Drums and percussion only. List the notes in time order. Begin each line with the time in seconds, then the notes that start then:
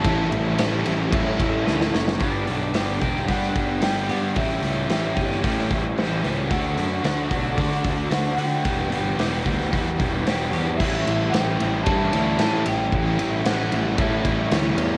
0.05 kick, ride
0.32 ride
0.58 snare, ride
0.86 ride
1.13 kick, ride
1.40 kick, ride
1.67 snare
1.81 snare
1.94 snare
2.08 snare
2.19 kick, open hi-hat
2.47 open hi-hat
2.74 snare, open hi-hat
3.01 kick, open hi-hat
3.16 snare
3.28 kick, open hi-hat
3.43 snare
3.55 kick, open hi-hat
3.82 snare, open hi-hat
4.09 open hi-hat
4.36 kick, open hi-hat
4.63 open hi-hat
4.90 snare, open hi-hat
5.17 kick, open hi-hat
5.32 snare
5.44 kick, open hi-hat
5.58 snare
5.71 kick, open hi-hat
5.98 snare, open hi-hat
6.25 open hi-hat
6.51 kick, open hi-hat
6.78 open hi-hat
7.05 snare, open hi-hat
7.31 kick, open hi-hat
7.58 kick, open hi-hat
7.72 snare
7.84 kick, open hi-hat
8.12 snare, open hi-hat
8.38 open hi-hat
8.65 kick, open hi-hat
8.92 open hi-hat
9.19 snare, open hi-hat
9.46 kick, open hi-hat
9.60 snare
9.73 kick, open hi-hat
9.87 snare
9.99 kick, open hi-hat
10.26 snare, open hi-hat
10.53 open hi-hat
10.80 kick, crash
11.07 ride
11.34 snare, ride
11.60 ride
11.86 kick, ride
12.13 ride
12.39 snare, ride
12.66 ride
12.92 kick, ride
13.19 ride
13.46 snare, ride
13.72 ride
13.98 kick, ride
14.25 kick, ride
14.52 snare, ride
14.78 ride